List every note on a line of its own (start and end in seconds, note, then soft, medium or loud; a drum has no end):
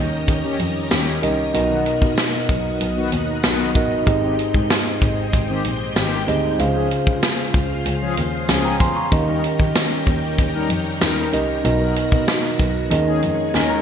0.00 0.20 D#2 medium
0.00 1.56 D#3 medium
0.00 1.52 G3 medium
0.00 1.22 C#4 medium
0.00 1.52 C#4 medium
0.00 1.22 D#4 medium
0.00 6.56 D#4 medium
0.00 1.23 G4 medium
0.00 1.52 G4 medium
0.00 1.23 A#4 medium
0.00 4.03 A#4 medium
0.00 1.23 D#5 loud
0.28 0.52 D#2 medium
0.28 kick loud
0.28 closed hi-hat medium
0.44 0.57 D#3 loud
0.44 0.57 C#4 loud
0.44 0.57 G4 loud
0.60 0.83 F2 loud
0.60 closed hi-hat medium
0.91 1.15 D#2 loud
0.91 1.18 D#3 loud
0.91 1.18 C#4 loud
0.91 1.18 G4 loud
0.91 snare loud
0.91 closed hi-hat loud
0.91 tambourine medium
1.22 1.46 C2 medium
1.22 1.44 C#4 medium
1.22 1.44 D#4 medium
1.22 1.44 G4 medium
1.22 1.45 A#4 medium
1.22 1.45 D#5 loud
1.22 closed hi-hat medium
1.54 1.78 B1 loud
1.54 2.45 B2 medium
1.54 4.04 F#3 medium
1.54 2.41 B3 medium
1.54 4.04 B3 medium
1.54 2.41 D#4 medium
1.54 2.42 F#4 medium
1.54 4.04 F#4 medium
1.54 2.42 A#4 medium
1.54 2.42 D#5 loud
1.54 closed hi-hat medium
1.70 1.84 D#3 medium
1.70 1.84 B3 medium
1.70 1.84 F#4 loud
1.86 closed hi-hat medium
2.02 2.25 B2 loud
2.02 kick loud
2.17 snare loud
2.17 closed hi-hat medium
2.17 tambourine medium
2.49 2.73 B1 medium
2.49 kick loud
2.49 closed hi-hat medium
2.81 3.04 B1 loud
2.81 closed hi-hat medium
2.96 3.10 D#3 loud
2.96 3.10 B3 loud
2.96 3.10 F#4 loud
3.12 3.36 D#2 loud
3.12 closed hi-hat medium
3.43 3.67 B1 loud
3.43 3.71 D#3 loud
3.43 3.71 B3 loud
3.43 3.71 F#4 loud
3.43 snare loud
3.43 closed hi-hat loud
3.43 tambourine medium
3.75 3.99 A1 medium
3.75 3.97 B3 medium
3.75 3.97 D#4 medium
3.75 3.97 F#4 medium
3.75 3.97 A#4 medium
3.75 3.98 D#5 medium
3.75 kick loud
3.75 closed hi-hat medium
4.07 4.31 G#1 loud
4.07 4.98 G#2 medium
4.07 9.08 G#3 medium
4.07 4.94 C4 medium
4.07 6.57 C4 medium
4.07 4.94 D#4 medium
4.07 4.94 G4 medium
4.07 4.94 G#4 medium
4.07 4.95 D#5 medium
4.07 6.57 G5 medium
4.07 kick loud
4.07 closed hi-hat medium
4.23 4.36 D#3 medium
4.23 4.36 C4 medium
4.23 4.36 G4 loud
4.39 closed hi-hat medium
4.54 4.78 G#2 loud
4.54 kick medium
4.70 snare loud
4.70 closed hi-hat medium
4.70 tambourine medium
5.02 5.25 G#1 medium
5.02 kick loud
5.02 closed hi-hat medium
5.33 5.57 G#1 loud
5.33 kick medium
5.33 closed hi-hat loud
5.49 5.62 D#3 medium
5.49 5.62 C4 loud
5.49 5.62 G4 loud
5.65 5.89 A#1 medium
5.65 closed hi-hat medium
5.96 6.20 G#1 loud
5.96 6.23 D#3 medium
5.96 6.23 C4 loud
5.96 6.23 G4 loud
5.96 snare loud
5.96 closed hi-hat loud
5.96 tambourine medium
6.27 6.52 D2 medium
6.27 6.49 C4 medium
6.27 6.50 D#4 medium
6.27 6.50 G4 medium
6.27 6.50 G#4 medium
6.27 6.50 D#5 loud
6.27 closed hi-hat medium
6.59 6.83 C#2 loud
6.59 7.50 C#3 medium
6.59 9.10 C#3 medium
6.59 7.46 C#4 medium
6.59 7.47 F4 medium
6.59 9.09 F4 medium
6.59 7.47 G#4 medium
6.59 9.10 C5 medium
6.59 7.47 C5 medium
6.59 7.47 F5 loud
6.59 closed hi-hat medium
6.75 6.89 F3 medium
6.75 6.89 C#4 medium
6.75 6.89 G#4 loud
6.91 closed hi-hat medium
7.07 7.31 C#3 loud
7.07 kick loud
7.23 snare loud
7.23 closed hi-hat medium
7.23 tambourine medium
7.54 7.78 C#2 loud
7.54 kick loud
7.54 closed hi-hat medium
7.86 8.09 C#2 medium
7.86 closed hi-hat medium
8.01 8.15 F3 loud
8.01 8.15 C#4 loud
8.01 8.15 G#4 loud
8.17 8.41 D#2 loud
8.17 closed hi-hat medium
8.49 8.73 C#2 loud
8.49 8.76 F3 loud
8.49 8.76 C#4 loud
8.49 8.76 G#4 loud
8.49 8.64 F5 medium
8.49 8.64 G#5 medium
8.49 snare loud
8.49 closed hi-hat loud
8.49 tambourine medium
8.65 8.80 G5 medium
8.65 8.80 A#5 medium
8.80 9.04 E2 medium
8.80 8.96 G#5 medium
8.80 8.96 C6 medium
8.80 kick loud
8.80 closed hi-hat medium
8.96 9.27 A#5 medium
8.96 9.26 C#6 medium
9.11 9.36 D#2 loud
9.11 11.62 D#3 medium
9.11 10.03 D#3 medium
9.11 11.62 G3 medium
9.11 9.99 C#4 medium
9.11 11.62 C#4 medium
9.11 9.99 D#4 medium
9.11 11.62 G4 loud
9.11 9.99 G4 medium
9.11 12.87 A#4 medium
9.11 10.00 A#4 medium
9.11 10.00 D#5 loud
9.11 kick loud
9.11 closed hi-hat medium
9.28 9.41 G3 medium
9.28 9.41 D#4 medium
9.28 9.41 A#4 loud
9.44 closed hi-hat medium
9.60 9.83 D#3 loud
9.60 kick loud
9.75 snare loud
9.75 closed hi-hat loud
9.75 tambourine medium
10.07 10.31 D#2 loud
10.07 kick loud
10.07 closed hi-hat medium
10.38 10.62 D#2 medium
10.38 kick medium
10.38 closed hi-hat medium
10.54 10.68 G3 loud
10.54 10.68 D#4 loud
10.54 10.68 A#4 loud
10.70 10.93 F2 loud
10.70 closed hi-hat medium
11.01 11.25 D#2 loud
11.01 11.28 G3 loud
11.01 11.28 D#4 loud
11.01 11.28 A#4 loud
11.01 snare loud
11.01 closed hi-hat loud
11.01 tambourine medium
11.32 11.57 C2 medium
11.32 11.55 C#4 medium
11.32 11.55 D#4 medium
11.32 11.55 G4 medium
11.32 11.55 A#4 medium
11.32 11.55 D#5 loud
11.32 closed hi-hat medium
11.64 11.88 B1 loud
11.64 12.55 B2 medium
11.64 12.90 D#3 medium
11.64 12.90 F#3 medium
11.64 12.52 B3 medium
11.64 12.90 B3 medium
11.64 12.52 D#4 medium
11.64 12.52 F#4 medium
11.64 12.90 F#4 medium
11.64 12.52 A#4 medium
11.64 12.52 D#5 medium
11.64 closed hi-hat medium
11.80 11.94 F#3 medium
11.80 11.94 D#4 medium
11.80 11.94 A#4 loud
11.96 closed hi-hat medium
12.12 12.36 B2 loud
12.12 kick loud
12.28 snare loud
12.28 closed hi-hat medium
12.28 tambourine medium
12.59 12.83 B1 loud
12.59 kick loud
12.59 closed hi-hat medium
12.90 13.22 D#2 loud
12.90 13.82 D#3 medium
12.90 13.82 G#3 medium
12.90 13.82 A#3 medium
12.90 13.66 C#4 medium
12.90 13.82 C#4 medium
12.90 13.67 D#4 medium
12.90 13.67 G#4 medium
12.90 13.82 G#4 medium
12.90 13.67 A#4 medium
12.90 13.21 D#5 loud
12.90 closed hi-hat medium
13.07 13.20 D#3 loud
13.07 13.20 C#4 loud
13.07 13.20 G#4 loud
13.22 13.46 F2 loud
13.22 13.52 D#5 medium
13.22 closed hi-hat medium
13.54 13.78 D#2 medium
13.54 13.82 D#3 loud
13.54 13.82 C#4 loud
13.54 13.82 A#4 loud
13.54 13.69 G#5 medium
13.54 snare medium
13.70 13.82 A#5 medium